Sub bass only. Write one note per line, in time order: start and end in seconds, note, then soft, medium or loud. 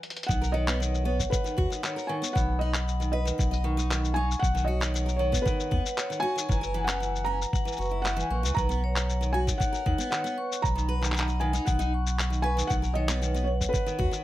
0.30 1.26 B1 medium
1.59 1.67 D#2 medium
2.36 3.32 B1 medium
3.39 4.36 B1 medium
4.43 5.39 B1 loud
5.72 5.80 D#2 loud
6.49 7.46 F#1 medium
7.79 8.24 F#1 loud
8.31 8.45 A#1 medium
8.43 8.52 C#2 loud
8.57 9.53 B1 medium
9.86 9.95 D#2 loud
10.64 11.60 B1 medium
11.67 12.63 B1 loud
12.71 13.67 B1 medium
13.99 14.08 D#2 medium